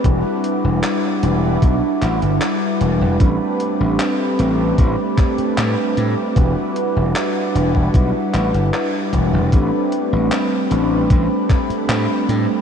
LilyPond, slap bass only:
\new Staff \with { instrumentName = "Slap bass" } { \clef bass \time 4/4 \key e \minor \tempo 4 = 76 e,,16 r8 e,,16 r8 e,,8 b,,16 r16 a,,16 g,,16 r8 e,,16 e,,16 | a,,16 r8 a,,16 r8 a,,8 a,,16 r8. a,16 r16 a,16 r16 | e,,16 r8 e,,16 r8 e,,8 b,,16 r16 a,,16 g,,16 r8 e,,16 e,,16 | a,,16 r8 a,,16 r8 a,,8 a,,16 r8. a,16 r16 a,16 r16 | }